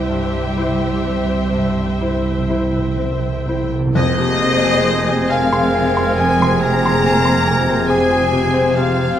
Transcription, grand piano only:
Already playing: C2 C4 E4 C5
0.09 G2
0.57 E4 C5
1.04 C4
1.53 G2
2.01 E4 C5
2.50 E4 C5
2.98 C4
3.49 E4 C5
3.95 F2
4.18 C3
4.42 C4
4.64 G#4
4.88 C5
5.08 G#4
5.30 G#5
5.53 C6
5.74 G#5
5.97 C6
6.20 G#5
6.42 C6
6.64 G#5
6.86 C6
7.06 G#5
7.25 C6
7.47 G#5
7.69 C5
7.90 G#4
8.11 C4
8.31 C3
8.54 C4
8.76 C3
8.96 C4

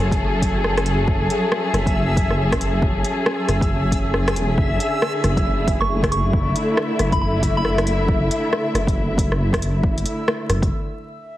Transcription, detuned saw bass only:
0.00 F#1
1.08 F#1
1.73 F#1
2.82 F#1
3.48 F#1
3.92 F#1
4.36 E1
4.58 F#1
5.24 F#1
6.33 F#1
6.99 F#1
8.08 F#1
8.74 F#1
9.83 F#1
10.49 F#1

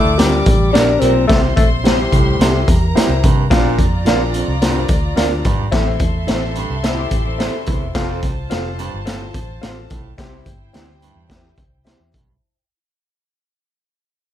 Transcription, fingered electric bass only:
0.05 D2
0.46 A1
0.75 A#1
1.02 B1
1.30 C2
1.57 A#1
2.12 C2
2.39 C2
2.68 E2
2.96 muted fingered electric bass stroke
3.09 C2
3.24 C3
3.51 A#1
3.79 F2
4.06 A#1
4.48 C2
4.89 D2
5.18 D2
5.45 G#1
5.72 A1
6.00 E2
6.29 A1
6.70 C2
7.11 A1
7.67 C2
7.82 E1
7.95 F1
8.23 C2
8.52 F1
8.94 G1
9.35 A1
9.63 A1
9.91 B1
10.18 C2
10.46 G1
10.75 D2
11.16 E2
11.58 C2
12.00 E2
12.14 B1

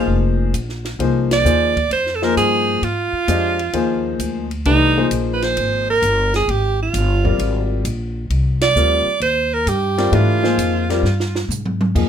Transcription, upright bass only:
0.08 F1
0.54 A#1
0.99 C2
1.45 D#2
1.91 F2
2.36 G2
2.82 G#2
3.13 muted upright bass stroke
3.28 F2
3.73 D#2
4.19 D2
4.65 C2
5.11 A#1
5.57 G#1
6.02 G1
6.48 G#1
6.93 G1
7.39 G#1
7.85 A#1
8.30 C2
8.75 D2
9.07 muted upright bass stroke
9.20 D#2
9.66 G2
10.12 G#2
10.58 F2
11.03 G2
11.49 G#2
11.95 F2

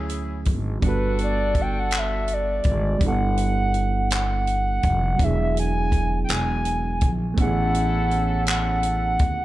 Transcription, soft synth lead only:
0.87 B4
1.23 D5
1.61 G5
1.79 F#5
1.98 E5
2.33 D5
3.07 F#5
4.14 F#5
5.24 E5
5.60 G#5
6.24 G5
6.32 G#5
7.40 F#5
8.49 F#5

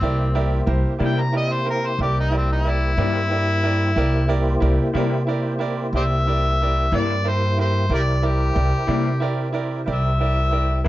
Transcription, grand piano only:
0.02 E4 G4 A#4 D5
0.35 E4 G4 A#4 D5
0.66 E4 G4 A#4 C5
0.99 E4 G4 A#4 D5
1.32 E4 G4 A#4 D5
1.65 E4 G4 A#4 C5
2.00 E4 G4 A#4 D5
2.31 E4 G4 A#4 D5
2.64 E4 G4 A#4 D5
2.97 E4 G4 A#4 D5
3.30 E4 G4 A#4 D5
3.63 E4 G4 A#4 D5
3.95 E4 G4 A#4 D5
4.28 E4 G4 A#4 D5
4.60 E4 G4 A#4 D5
4.95 E4 G4 A#4 D5
5.27 E4 G4 A#4 D5
5.59 E4 G4 A#4 D5
5.94 E4 G4 A#4 D5
6.27 E4 G4 A#4 D5
6.61 E4 G4 A#4 D5
6.92 E4 G4 A#4 D5
7.24 E4 G4 A#4 C5
7.57 E4 G4 A#4 E5
7.90 E4 G4 A#4 D5
8.22 E4 G4 A#4 D5
8.54 E4 G4 A#4 D5
8.87 E4 G4 A#4 D5
9.20 E4 G4 A#4 D5
9.52 E4 G4 A#4 D5
9.86 E4 G4 A#4 D5
10.19 E4 G4 A#4 D5
10.51 E4 G4 A#4 D5
10.84 E4 G4 A#4

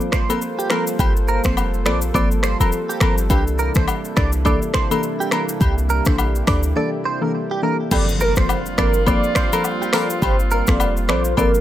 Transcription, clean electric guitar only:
0.13 C5
0.30 A#4
0.59 G4
0.71 A#4
1.00 G4
1.28 A#4
1.45 C5
1.86 D5
2.15 D5
2.44 C5
2.61 A#4
2.89 G4
3.01 A#4
3.30 G4
3.59 A#4
3.76 C5
4.17 D5
4.46 D5
4.74 C5
4.91 A#4
5.20 G4
5.32 A#4
5.61 G4
5.90 A#4
6.07 C5
6.48 D5
6.77 D5
7.05 C5
7.22 A#4
7.51 G4
7.63 A#4
7.92 G4
8.21 A#4
8.38 C5
8.79 D5
9.07 D5
9.36 C5
9.53 A#4
9.82 G4
9.94 A#4
10.23 G4
10.52 A#4
10.68 C5
11.09 D5
11.38 D5

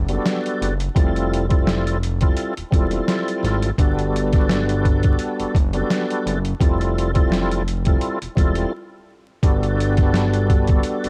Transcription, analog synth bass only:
Already playing: F#1
0.62 F#1
0.96 F1
2.57 E1
2.73 E1
3.44 G#1
3.79 G1
5.40 F#1
5.55 F#1
6.26 F#1
6.61 F1
8.22 E1
8.37 E1
9.43 G1
11.04 F#1

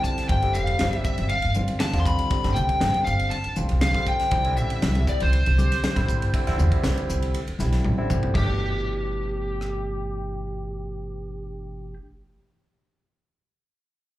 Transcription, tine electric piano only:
Already playing: D3 G3 C4 E4
0.30 D3 G3 C4 F4
0.43 D3 G3 C4 G4
1.55 D3 G3 C4 F4
1.93 D3 G3 C4 F4
2.30 D3 G3 C4 G4
2.44 D3 G3 C4 D4
3.56 D3 G3 C4 F4
3.94 D3 G3 C4 F4
4.31 D3 G3 C4 E4
4.45 D3 G3 C4 E4
5.58 D3 G3 C4 G4
5.96 D3 G3 C4 E4
6.34 D3 G3 C4 E4
6.47 D3 G3 C4 E4
7.60 D3 G3 C4 E4
7.98 D3 G3 C4 E4
8.33 B2 E3 A3
8.38 D4

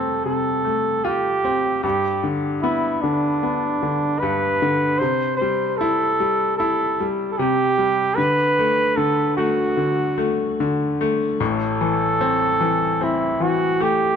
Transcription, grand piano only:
Already playing: F2 C3 A3 C4
0.25 C3
0.65 A3
1.05 F4
1.44 C4
1.83 G2
2.24 D3
2.63 B3
3.04 D3
3.43 B3
3.83 D3
4.23 G2
4.62 D3
5.01 C3
5.41 G3
5.81 E4
6.20 G3
6.60 E4
7.00 G3
7.39 C3
7.78 G3
8.18 D3
8.59 A3
8.97 D3
9.38 A3
9.77 D3
10.18 A3
10.60 D3
11.01 A3
11.40 A1 A2
11.81 E3
12.21 C4
12.61 E3
13.01 C4
13.40 E3
13.80 A3

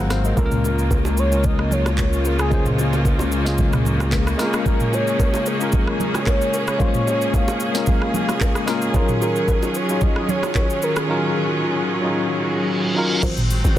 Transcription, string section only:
Already playing: F#3 G#3 C4
0.37 C#3 A#3 F4
4.39 C#4 G#4
8.94 D#3 F#3 C#4 F4
13.23 F#3 G#3 C4

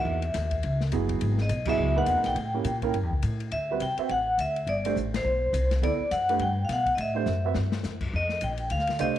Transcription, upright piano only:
Already playing: E3 A#3 D#4 F#4
0.93 F#3 B3 E4 G#4
1.67 F#3 B3 E4 G#4
1.96 A#2 D#4 G#4 B4
2.54 A#3 C#4 E4 G4
2.83 A#3 C#4 E4 A#4
3.71 G3 C4 F#4 B4
3.99 C4 F#4 B4 E5
4.86 A3 D4 G4 C5
5.83 B3 E4 A4 D5
6.29 A3 D4 G4 B4
7.15 A3 D4 G4 C5
7.45 C4 F#4 B4 E5
8.99 A3 D4 G4 C5

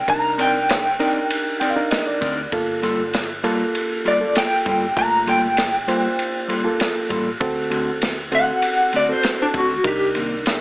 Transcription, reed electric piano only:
0.08 D4 D#4 A#4
0.99 D4 D#4 A#4
1.60 G5
1.70 F5
1.76 D4 D#4 A#4
1.91 D#5
2.07 D5
2.52 A#3 F4 A4
3.43 A#3 F4 A4
4.20 A#3 F4 A4
4.97 A3 A#3 F4
5.88 A#3 F4 C5
6.64 A#3 F4 A4
7.40 C4 F#4 A4
8.32 C4 F#4 A4
9.09 C4 F#4 A4
9.84 D4 D#4 A#4

